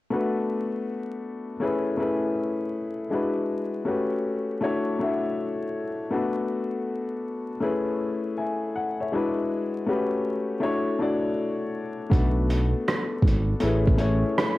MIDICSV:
0, 0, Header, 1, 4, 480
1, 0, Start_track
1, 0, Tempo, 750000
1, 74, Time_signature, 4, 2, 24, 8
1, 9331, End_track
2, 0, Start_track
2, 0, Title_t, "Upright piano"
2, 0, Program_c, 0, 0
2, 68, Note_on_c, 0, 57, 83
2, 73, Note_on_c, 0, 59, 61
2, 78, Note_on_c, 0, 62, 68
2, 85, Note_on_c, 0, 66, 72
2, 89, Note_on_c, 0, 71, 83
2, 209, Control_c, 0, 64, 127
2, 969, Note_off_c, 0, 57, 0
2, 972, Note_off_c, 0, 59, 0
2, 975, Note_off_c, 0, 62, 0
2, 978, Note_off_c, 0, 66, 0
2, 980, Note_off_c, 0, 71, 0
2, 1023, Note_on_c, 0, 57, 74
2, 1028, Note_on_c, 0, 61, 75
2, 1032, Note_on_c, 0, 64, 74
2, 1039, Note_on_c, 0, 68, 71
2, 1042, Control_c, 0, 64, 0
2, 1044, Note_on_c, 0, 71, 90
2, 1165, Control_c, 0, 64, 127
2, 1250, Note_off_c, 0, 57, 0
2, 1255, Note_off_c, 0, 61, 0
2, 1257, Note_off_c, 0, 64, 0
2, 1260, Note_on_c, 0, 57, 70
2, 1261, Note_off_c, 0, 68, 0
2, 1263, Note_off_c, 0, 71, 0
2, 1266, Note_on_c, 0, 61, 66
2, 1269, Note_on_c, 0, 64, 69
2, 1276, Note_on_c, 0, 68, 67
2, 1280, Note_on_c, 0, 71, 90
2, 1941, Note_off_c, 0, 57, 0
2, 1944, Note_off_c, 0, 61, 0
2, 1945, Note_off_c, 0, 64, 0
2, 1949, Note_off_c, 0, 68, 0
2, 1951, Note_off_c, 0, 71, 0
2, 1985, Note_on_c, 0, 56, 70
2, 1989, Note_on_c, 0, 62, 66
2, 1994, Note_on_c, 0, 64, 67
2, 1999, Note_on_c, 0, 66, 63
2, 2003, Control_c, 0, 64, 0
2, 2004, Note_on_c, 0, 71, 81
2, 2104, Control_c, 0, 64, 127
2, 2461, Note_off_c, 0, 66, 0
2, 2463, Note_on_c, 0, 57, 78
2, 2467, Note_on_c, 0, 61, 66
2, 2469, Note_off_c, 0, 56, 0
2, 2471, Note_off_c, 0, 62, 0
2, 2471, Note_on_c, 0, 66, 70
2, 2474, Note_off_c, 0, 64, 0
2, 2474, Note_off_c, 0, 71, 0
2, 2476, Note_on_c, 0, 67, 59
2, 2481, Control_c, 0, 64, 0
2, 2483, Note_on_c, 0, 71, 74
2, 2610, Control_c, 0, 64, 127
2, 2918, Note_off_c, 0, 57, 0
2, 2919, Note_off_c, 0, 61, 0
2, 2922, Note_off_c, 0, 66, 0
2, 2924, Note_off_c, 0, 67, 0
2, 2928, Note_off_c, 0, 71, 0
2, 2947, Note_on_c, 0, 57, 87
2, 2952, Note_on_c, 0, 62, 68
2, 2957, Note_on_c, 0, 64, 74
2, 2962, Control_c, 0, 64, 0
2, 2963, Note_on_c, 0, 66, 68
2, 2967, Note_on_c, 0, 73, 89
2, 3067, Control_c, 0, 64, 127
2, 3175, Note_off_c, 0, 57, 0
2, 3177, Note_off_c, 0, 62, 0
2, 3180, Note_off_c, 0, 64, 0
2, 3183, Note_off_c, 0, 66, 0
2, 3185, Note_off_c, 0, 73, 0
2, 3194, Note_on_c, 0, 57, 78
2, 3201, Note_on_c, 0, 62, 67
2, 3205, Note_on_c, 0, 64, 62
2, 3211, Note_on_c, 0, 66, 69
2, 3214, Note_on_c, 0, 76, 76
2, 3868, Note_off_c, 0, 57, 0
2, 3871, Note_off_c, 0, 62, 0
2, 3873, Note_off_c, 0, 64, 0
2, 3876, Note_off_c, 0, 66, 0
2, 3878, Note_off_c, 0, 76, 0
2, 3907, Note_on_c, 0, 57, 78
2, 3912, Note_on_c, 0, 59, 71
2, 3918, Note_on_c, 0, 62, 74
2, 3921, Note_on_c, 0, 66, 79
2, 3923, Control_c, 0, 64, 0
2, 3928, Note_on_c, 0, 71, 80
2, 4043, Control_c, 0, 64, 127
2, 4809, Note_off_c, 0, 57, 0
2, 4811, Note_off_c, 0, 59, 0
2, 4814, Note_off_c, 0, 62, 0
2, 4816, Note_off_c, 0, 66, 0
2, 4819, Note_off_c, 0, 71, 0
2, 4866, Note_on_c, 0, 57, 82
2, 4871, Note_on_c, 0, 61, 65
2, 4879, Note_on_c, 0, 64, 77
2, 4881, Control_c, 0, 64, 0
2, 4883, Note_on_c, 0, 68, 78
2, 4886, Note_on_c, 0, 71, 88
2, 5004, Control_c, 0, 64, 127
2, 5094, Note_off_c, 0, 57, 0
2, 5097, Note_off_c, 0, 61, 0
2, 5101, Note_off_c, 0, 64, 0
2, 5103, Note_off_c, 0, 68, 0
2, 5105, Note_off_c, 0, 71, 0
2, 5361, Note_on_c, 0, 80, 66
2, 5364, Note_on_c, 0, 76, 52
2, 5586, Note_off_c, 0, 80, 0
2, 5587, Note_off_c, 0, 76, 0
2, 5605, Note_on_c, 0, 78, 63
2, 5749, Note_off_c, 0, 78, 0
2, 5762, Note_on_c, 0, 76, 62
2, 5767, Note_on_c, 0, 73, 50
2, 5837, Note_on_c, 0, 56, 82
2, 5842, Note_on_c, 0, 62, 69
2, 5843, Control_c, 0, 64, 0
2, 5847, Note_on_c, 0, 64, 79
2, 5851, Note_on_c, 0, 66, 72
2, 5857, Note_on_c, 0, 71, 87
2, 5940, Control_c, 0, 64, 127
2, 5985, Note_off_c, 0, 76, 0
2, 5987, Note_off_c, 0, 73, 0
2, 6314, Note_on_c, 0, 57, 75
2, 6315, Note_off_c, 0, 56, 0
2, 6316, Note_off_c, 0, 66, 0
2, 6318, Note_off_c, 0, 62, 0
2, 6320, Note_off_c, 0, 64, 0
2, 6320, Note_on_c, 0, 61, 73
2, 6323, Control_c, 0, 64, 0
2, 6325, Note_off_c, 0, 71, 0
2, 6325, Note_on_c, 0, 66, 70
2, 6330, Note_on_c, 0, 67, 73
2, 6336, Note_on_c, 0, 71, 90
2, 6425, Control_c, 0, 64, 127
2, 6763, Note_off_c, 0, 57, 0
2, 6766, Note_off_c, 0, 61, 0
2, 6769, Note_off_c, 0, 66, 0
2, 6771, Note_off_c, 0, 67, 0
2, 6774, Note_off_c, 0, 71, 0
2, 6784, Note_on_c, 0, 57, 84
2, 6789, Note_on_c, 0, 62, 74
2, 6794, Note_on_c, 0, 64, 75
2, 6798, Note_on_c, 0, 66, 68
2, 6801, Control_c, 0, 64, 0
2, 6804, Note_on_c, 0, 73, 97
2, 6930, Control_c, 0, 64, 127
2, 7014, Note_off_c, 0, 57, 0
2, 7016, Note_off_c, 0, 62, 0
2, 7018, Note_off_c, 0, 64, 0
2, 7021, Note_off_c, 0, 66, 0
2, 7023, Note_off_c, 0, 73, 0
2, 7033, Note_on_c, 0, 57, 72
2, 7037, Note_on_c, 0, 62, 76
2, 7043, Note_on_c, 0, 64, 67
2, 7048, Note_on_c, 0, 66, 70
2, 7053, Note_on_c, 0, 74, 92
2, 7707, Note_off_c, 0, 57, 0
2, 7709, Note_off_c, 0, 62, 0
2, 7712, Note_off_c, 0, 64, 0
2, 7715, Note_off_c, 0, 66, 0
2, 7717, Note_off_c, 0, 74, 0
2, 7743, Note_on_c, 0, 57, 82
2, 7749, Note_on_c, 0, 59, 72
2, 7754, Note_on_c, 0, 62, 77
2, 7758, Note_on_c, 0, 66, 70
2, 7761, Control_c, 0, 64, 0
2, 7765, Note_on_c, 0, 71, 74
2, 7882, Control_c, 0, 64, 127
2, 8647, Note_off_c, 0, 57, 0
2, 8650, Note_off_c, 0, 59, 0
2, 8652, Note_off_c, 0, 62, 0
2, 8654, Note_off_c, 0, 66, 0
2, 8658, Note_off_c, 0, 71, 0
2, 8704, Note_on_c, 0, 57, 82
2, 8708, Note_on_c, 0, 61, 73
2, 8715, Note_on_c, 0, 64, 79
2, 8719, Note_on_c, 0, 68, 82
2, 8722, Control_c, 0, 64, 0
2, 8725, Note_on_c, 0, 71, 86
2, 8849, Control_c, 0, 64, 127
2, 8932, Note_off_c, 0, 57, 0
2, 8935, Note_off_c, 0, 61, 0
2, 8939, Note_off_c, 0, 64, 0
2, 8941, Note_off_c, 0, 68, 0
2, 8941, Note_on_c, 0, 57, 81
2, 8944, Note_off_c, 0, 71, 0
2, 8947, Note_on_c, 0, 61, 70
2, 8950, Note_on_c, 0, 64, 74
2, 8956, Note_on_c, 0, 68, 70
2, 8962, Note_on_c, 0, 73, 83
2, 9331, Note_off_c, 0, 57, 0
2, 9331, Note_off_c, 0, 61, 0
2, 9331, Note_off_c, 0, 64, 0
2, 9331, Note_off_c, 0, 68, 0
2, 9331, Note_off_c, 0, 73, 0
2, 9331, End_track
3, 0, Start_track
3, 0, Title_t, "Analog synth bass"
3, 0, Program_c, 1, 38
3, 7758, Note_on_c, 1, 35, 94
3, 8152, Note_off_c, 1, 35, 0
3, 8467, Note_on_c, 1, 32, 89
3, 8667, Note_off_c, 1, 32, 0
3, 8719, Note_on_c, 1, 33, 97
3, 9112, Note_off_c, 1, 33, 0
3, 9331, End_track
4, 0, Start_track
4, 0, Title_t, "Drums"
4, 7754, Note_on_c, 9, 36, 107
4, 7764, Note_on_c, 9, 42, 67
4, 7818, Note_off_c, 9, 36, 0
4, 7828, Note_off_c, 9, 42, 0
4, 8000, Note_on_c, 9, 42, 67
4, 8064, Note_off_c, 9, 42, 0
4, 8242, Note_on_c, 9, 42, 62
4, 8244, Note_on_c, 9, 37, 92
4, 8306, Note_off_c, 9, 42, 0
4, 8308, Note_off_c, 9, 37, 0
4, 8463, Note_on_c, 9, 36, 93
4, 8496, Note_on_c, 9, 42, 61
4, 8527, Note_off_c, 9, 36, 0
4, 8560, Note_off_c, 9, 42, 0
4, 8705, Note_on_c, 9, 42, 80
4, 8769, Note_off_c, 9, 42, 0
4, 8879, Note_on_c, 9, 36, 93
4, 8943, Note_off_c, 9, 36, 0
4, 8949, Note_on_c, 9, 42, 55
4, 9013, Note_off_c, 9, 42, 0
4, 9202, Note_on_c, 9, 37, 109
4, 9203, Note_on_c, 9, 42, 75
4, 9266, Note_off_c, 9, 37, 0
4, 9267, Note_off_c, 9, 42, 0
4, 9331, End_track
0, 0, End_of_file